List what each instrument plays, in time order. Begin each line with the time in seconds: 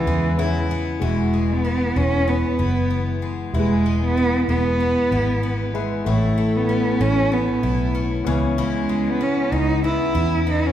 Already playing: twelve-string acoustic guitar C#3 B3 E4, cello E3, upright piano C#4 G#4 B4 E5
0.07 fingered electric bass E2, twelve-string acoustic guitar G#3
0.37 upright piano C#4 G#4 B4 E5, twelve-string acoustic guitar E4
0.71 twelve-string acoustic guitar B3
0.99 fingered electric bass E1, twelve-string acoustic guitar E2 E4, upright piano G#3 F#4 E5, cello G#3
1.34 twelve-string acoustic guitar G#3
1.53 cello B3
1.65 twelve-string acoustic guitar B3
1.96 fingered electric bass E1, twelve-string acoustic guitar G#3, cello C#4
2.28 twelve-string acoustic guitar B3, cello B3
2.59 fingered electric bass F#1, twelve-string acoustic guitar E4
2.90 twelve-string acoustic guitar B3
3.22 twelve-string acoustic guitar G#3
3.52 fingered electric bass E1, twelve-string acoustic guitar E2 E4, upright piano G3 E4, cello G#3
3.56 upright piano G#3 B4
3.86 twelve-string acoustic guitar G#3
4.04 cello B3
4.17 twelve-string acoustic guitar B3
4.48 fingered electric bass E1, twelve-string acoustic guitar G#3, cello B3
4.80 twelve-string acoustic guitar B3
5.11 fingered electric bass G#1, twelve-string acoustic guitar E4
5.43 twelve-string acoustic guitar B3
5.74 upright piano G#3 E4 B4, twelve-string acoustic guitar G#3
6.04 fingered electric bass A1, twelve-string acoustic guitar A2 E4, upright piano A3 E4 C#5, cello A3
6.38 twelve-string acoustic guitar A3
6.56 cello B3
6.69 twelve-string acoustic guitar C#4
7.00 fingered electric bass A1, twelve-string acoustic guitar A3, cello C#4
7.32 cello B3, twelve-string acoustic guitar C#4
7.63 fingered electric bass B1, twelve-string acoustic guitar E4
7.95 twelve-string acoustic guitar C#4
8.25 fingered electric bass C#2, twelve-string acoustic guitar C#3, upright piano E3 B3 C#5
8.58 twelve-string acoustic guitar C#3 E4, cello G#3
8.89 twelve-string acoustic guitar G#3
9.09 cello B3
9.21 twelve-string acoustic guitar B3, cello C#4
9.52 fingered electric bass C#2, twelve-string acoustic guitar G#3, cello D#4
9.84 twelve-string acoustic guitar B3, cello E4
10.15 fingered electric bass E2, twelve-string acoustic guitar E4
10.47 twelve-string acoustic guitar B3, cello D#4
10.66 cello C#4